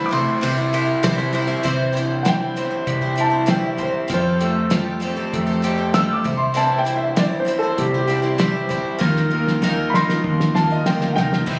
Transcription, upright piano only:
2.23 2.27 F#5 medium
2.28 3.17 G5 loud
3.20 3.49 A5 medium
3.51 3.64 G5 medium
3.66 3.80 E5 medium
3.83 4.11 C5 medium
4.14 4.72 C5 medium
5.94 6.14 E6 medium
6.13 6.34 D6 medium
6.37 6.56 C6 medium
6.56 6.76 A5 medium
6.79 6.97 G5 medium
6.97 7.17 E5 medium
7.19 7.38 D5 medium
7.40 7.59 C5 medium
7.59 7.78 A4 medium
7.78 7.96 G4 medium
7.98 9.17 G4 medium
9.90 9.93 B5 medium
9.95 10.54 C6 loud
10.55 10.69 A5 medium
10.71 10.85 D#5 medium
10.86 11.14 G5 medium
11.13 11.16 F#5 medium
11.13 11.46 G5 loud

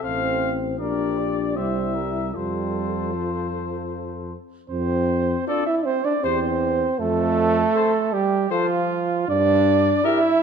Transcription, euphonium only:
0.03 0.76 C4 loud
0.79 1.58 D4 medium
1.56 2.34 G3 medium
2.35 3.15 G3 medium
3.14 4.32 F3 medium
4.70 5.44 C4 loud
5.48 5.66 D4 loud
5.67 5.87 E4 loud
5.86 6.04 C4 loud
6.05 6.13 D4 loud
6.23 7.01 C4 loud
6.99 8.14 A3 loud
8.13 8.50 G3 loud
8.51 9.27 F3 loud
9.28 10.03 D4 loud
10.04 10.43 E4 loud

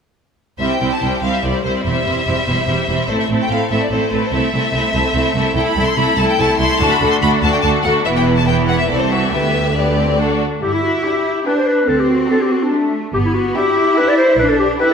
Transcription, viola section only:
0.59 0.80 G3 soft
0.59 0.80 C4 soft
0.81 1.02 G3 soft
0.81 1.02 C4 soft
1.03 1.23 G3 soft
1.03 1.23 C4 soft
1.24 1.43 G3 soft
1.24 1.43 C4 soft
1.44 1.64 G3 soft
1.44 1.64 C4 soft
1.65 1.85 G3 soft
1.65 1.85 C4 soft
1.87 2.05 G3 soft
1.87 2.06 C4 soft
2.07 2.26 G3 soft
2.07 2.26 C4 soft
2.27 2.47 G3 soft
2.27 2.47 C4 soft
2.49 2.68 G3 soft
2.49 2.68 C4 soft
2.69 2.88 G3 soft
2.69 2.88 C4 soft
2.89 3.09 G3 soft
2.89 3.09 C4 soft
3.10 3.30 A3 soft
3.10 3.30 C4 soft
3.31 3.50 A3 soft
3.31 3.50 C4 soft
3.51 3.70 A3 soft
3.51 3.70 C4 soft
3.71 3.91 A3 soft
3.71 3.91 C4 soft
3.92 4.11 A3 soft
3.92 4.11 C4 soft
4.12 4.32 A3 soft
4.12 4.32 C4 soft
4.33 4.52 A3 soft
4.33 4.53 C4 soft
4.54 4.72 A3 soft
4.54 4.72 C4 soft
4.73 4.93 A3 soft
4.73 4.93 C4 soft
4.94 5.14 A3 soft
4.94 5.14 C4 soft
5.15 5.34 A3 soft
5.15 5.34 C4 soft
5.35 5.54 A3 soft
5.35 5.55 C4 soft
5.55 5.75 A3 soft
5.55 5.75 E4 soft
5.77 5.96 A3 soft
5.77 5.96 E4 soft
5.97 6.17 A3 soft
5.97 6.17 E4 soft
6.18 6.38 A3 soft
6.18 6.38 E4 soft
6.39 6.59 A3 soft
6.39 6.59 E4 soft
6.60 6.79 A3 soft
6.60 6.80 E4 soft
6.81 7.00 A3 soft
6.81 7.00 D4 soft
7.01 7.22 A3 soft
7.01 7.22 D4 soft
7.23 7.42 A3 soft
7.23 7.43 D4 soft
7.44 7.63 A3 soft
7.44 7.63 D4 soft
7.64 7.84 A3 soft
7.64 7.84 D4 soft
7.85 8.05 A3 soft
7.85 8.05 D4 soft
8.05 8.44 E3 soft
8.05 8.44 B3 soft
8.47 8.88 E3 soft
8.47 8.88 B3 soft
8.89 9.32 E3 soft
8.89 9.31 C4 soft
9.33 9.76 D3 soft
9.33 9.75 B3 soft
9.77 10.18 D3 soft
9.77 9.98 B3 soft
9.98 10.19 C4 soft
10.19 10.41 D3 soft
10.19 10.42 D4 soft
11.04 11.36 D4 soft
11.46 11.77 D4 soft
12.30 12.61 D4 soft
12.73 13.04 D4 soft
13.56 13.86 D4 soft
13.97 14.28 D4 soft
14.80 14.94 D4 soft

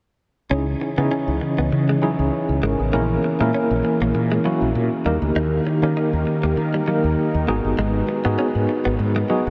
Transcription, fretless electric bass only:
0.51 0.74 C#2 medium
0.98 1.08 C#3 medium
1.28 1.38 C#2 medium
1.58 1.69 C#2 medium
1.72 1.95 C#3 medium
2.19 2.29 C#2 medium
2.49 2.59 C#2 medium
2.63 2.75 G#1 medium
2.80 2.90 A1 medium
2.93 3.16 A#1 medium
3.40 3.51 A#2 medium
3.71 3.81 A#1 medium
4.01 4.11 A#1 medium
4.14 4.37 A#2 medium
4.62 4.72 A#1 medium
4.75 4.88 A#2 medium
5.05 5.18 D#2 medium
5.22 5.32 D2 medium
5.35 5.58 D#2 medium
5.82 5.93 D#3 medium
6.13 6.23 D#2 medium
6.43 6.54 D#2 medium
6.57 6.80 D#3 medium
7.04 7.14 D#2 medium
7.34 7.45 D#2 medium
7.48 7.60 G#1 medium
7.64 7.75 G1 medium
7.78 8.01 G#1 medium
8.25 8.35 G#2 medium
8.55 8.65 G#2 medium
8.86 8.96 G#1 medium
8.99 9.22 G#2 medium
9.47 9.50 G#1 medium

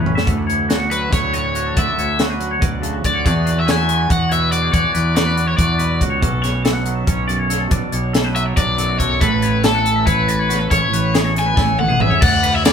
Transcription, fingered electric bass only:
0.05 0.15 A1 medium
0.27 1.09 D2 medium
1.13 1.73 D2 medium
1.77 1.87 D2 medium
1.98 2.58 D2 medium
2.62 3.02 D2 medium
3.05 3.26 D2 medium
3.26 4.07 E2 medium
4.11 4.71 E2 medium
4.73 4.84 E2 medium
4.95 5.55 E2 medium
5.58 5.99 E2 medium
6.01 6.23 C#2 medium
6.23 7.04 B1 medium
7.08 7.68 B1 medium
7.71 7.81 B1 medium
7.93 8.53 B1 medium
8.57 8.97 B1 medium
9.00 9.21 B1 medium
9.21 10.03 A1 medium
10.07 10.67 A1 medium
10.71 10.81 A1 loud
10.92 11.53 A1 medium
11.57 11.97 A1 medium
11.99 12.10 A1 medium
12.22 12.73 D2 loud

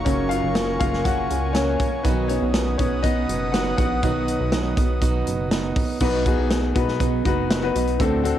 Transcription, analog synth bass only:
0.06 0.41 F#1 loud
0.44 0.78 F#1 medium
0.81 1.27 F#1 medium
1.31 1.77 C#2 medium
2.05 2.39 B1 loud
2.42 2.77 B1 loud
2.80 3.25 B1 medium
3.29 3.75 F#1 medium
3.78 4.01 A#1 loud
4.03 4.38 B1 loud
4.40 4.75 B1 medium
4.77 5.24 B1 medium
5.27 5.73 F#1 medium
6.01 6.36 B1 loud
6.39 6.73 B1 loud
6.76 7.22 B1 medium
7.25 7.71 F#1 medium
7.75 7.98 B1 medium
8.00 8.34 D2 loud

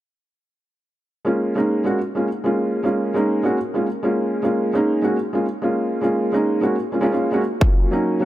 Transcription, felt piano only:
1.25 1.53 G#3 medium
1.25 1.54 A#3 medium
1.25 1.54 C#4 medium
1.25 1.54 F4 medium
1.55 1.83 G#3 medium
1.55 1.83 A#3 medium
1.55 1.83 C#4 medium
1.55 1.84 D#4 medium
1.84 1.97 G#3 medium
1.84 1.98 A#3 medium
1.84 1.98 C#4 medium
1.84 1.98 F#4 medium
2.15 2.27 G#3 medium
2.15 2.27 A#3 medium
2.15 2.27 C#4 medium
2.15 2.27 F4 medium
2.44 2.82 G#3 medium
2.44 2.82 A#3 medium
2.44 2.83 C#4 medium
2.44 2.83 F4 medium
2.83 3.12 G#3 medium
2.83 3.12 A#3 medium
2.83 3.13 C#4 medium
2.83 3.13 F4 medium
3.14 3.41 G#3 medium
3.14 3.42 A#3 medium
3.14 3.42 C#4 medium
3.14 3.42 D#4 medium
3.43 3.56 G#3 medium
3.43 3.57 A#3 medium
3.43 3.57 C#4 medium
3.43 3.57 F#4 medium
3.74 3.85 G#3 medium
3.74 3.86 A#3 medium
3.74 3.86 C#4 medium
3.74 3.86 F4 medium
4.03 4.41 G#3 medium
4.03 4.41 A#3 medium
4.03 4.41 C#4 medium
4.03 4.42 F4 medium
4.43 4.71 G#3 medium
4.43 4.71 A#3 medium
4.43 4.72 C#4 medium
4.43 4.72 F4 medium
4.73 5.00 G#3 medium
4.73 5.01 A#3 medium
4.73 5.01 C#4 medium
4.73 5.01 D#4 medium
5.02 5.15 G#3 medium
5.02 5.16 A#3 medium
5.02 5.16 C#4 medium
5.02 5.16 F#4 medium
5.33 5.44 G#3 medium
5.33 5.45 A#3 medium
5.33 5.45 C#4 medium
5.33 5.45 F4 medium
5.62 6.00 G#3 medium
5.62 6.00 A#3 medium
5.62 6.00 C#4 medium
5.62 6.01 F4 medium
6.01 6.30 G#3 medium
6.01 6.30 A#3 medium
6.01 6.31 C#4 medium
6.01 6.31 F4 medium
6.32 6.59 G#3 medium
6.32 6.60 A#3 medium
6.32 6.60 C#4 medium
6.32 6.60 D#4 medium
6.61 6.74 G#3 medium
6.61 6.75 A#3 medium
6.61 6.75 C#4 medium
6.61 6.75 F#4 medium
6.92 6.99 G#3 medium
6.92 7.00 A#3 medium
6.92 7.00 C#4 medium
6.92 7.01 F4 medium
7.01 7.10 G#3 medium
7.01 7.11 A#3 medium
7.01 7.11 C#4 medium
7.01 7.12 F4 medium
7.12 7.29 G#3 medium
7.12 7.30 A#3 medium
7.12 7.30 C#4 medium
7.12 7.30 F4 medium
7.32 7.40 G#3 medium
7.32 7.40 A#3 medium
7.32 7.41 C#4 medium
7.32 7.41 F#4 medium
7.60 7.89 F#3 medium
7.60 7.89 A#3 medium
7.60 7.90 C#4 medium
7.60 7.90 F4 medium
7.91 8.18 F#3 medium
7.91 8.19 A#3 medium
7.91 8.19 C#4 medium
7.91 8.19 D#4 medium
8.20 8.25 F#3 medium
8.20 8.25 A#3 medium
8.20 8.25 C#4 medium
8.20 8.25 F#4 medium

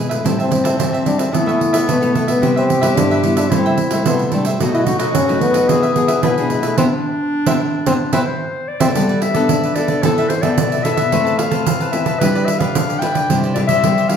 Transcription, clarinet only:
0.24 1.34 C4 medium
1.33 2.41 B3 medium
2.42 3.52 G4 loud
3.50 4.33 E4 medium
4.59 5.70 F#4 loud
5.69 6.24 G#4 loud
6.23 6.79 E4 medium
6.78 8.13 D4 loud
8.13 8.28 B4 medium
8.26 8.70 C5 medium
8.68 9.21 D5 medium
9.22 9.77 E5 medium
9.75 10.04 D5 medium
10.03 10.30 A4 medium
10.29 10.43 C5 medium
10.42 10.85 D5 medium
10.84 11.39 E5 loud
11.38 11.94 F5 medium
11.92 12.21 E5 medium
12.19 12.47 B4 loud
12.46 12.60 E5 medium
12.59 13.01 F5 medium
12.99 13.38 G5 loud
13.54 13.61 D5 medium
13.67 14.10 E5 loud
14.08 14.17 F5 medium

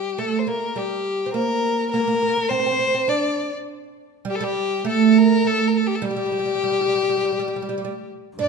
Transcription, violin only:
0.00 0.20 G4 medium
0.18 0.40 A4 medium
0.39 0.49 C5 medium
0.48 0.79 A#4 medium
0.77 1.32 G4 medium
1.33 1.87 A#4 loud
1.92 2.50 A#4 loud
2.49 3.10 C5 loud
3.09 3.53 D5 medium
4.30 4.37 G4 medium
4.35 4.45 A4 medium
4.43 4.86 G4 loud
4.88 5.19 A4 medium
5.18 5.48 A#4 loud
5.47 5.69 A4 loud
5.68 5.79 A#4 medium
5.77 5.88 A4 medium
5.86 5.96 G4 medium
5.95 6.06 A4 medium
6.05 8.09 G4 loud
8.41 8.48 D5 loud

